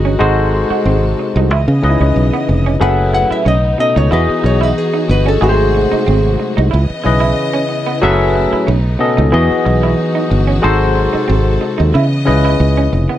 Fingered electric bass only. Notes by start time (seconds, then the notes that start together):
Already playing: G1
0.20 G#1
0.70 muted fingered electric bass stroke
0.85 G#1
1.36 C2
1.51 C#2
1.68 C#3
1.83 C#2
2.01 C#2
2.16 B1
2.49 F1
2.81 F#1
3.31 muted fingered electric bass stroke
3.46 B1
3.96 C#2
4.12 E2
4.29 muted fingered electric bass stroke
4.44 B1
5.09 G1
5.42 G#1
5.93 muted fingered electric bass stroke
6.08 G#1
6.58 C2
6.73 C#2
6.90 muted fingered electric bass stroke
7.06 B1
8.03 F#1
8.53 muted fingered electric bass stroke
8.68 B1
9.18 C#2
9.34 E2
9.51 muted fingered electric bass stroke
9.66 B1
10.31 G1
10.64 G#1
11.14 muted fingered electric bass stroke
11.29 G#1
11.80 D#2
11.95 C#3
12.28 C#2
12.60 C#2
12.93 F1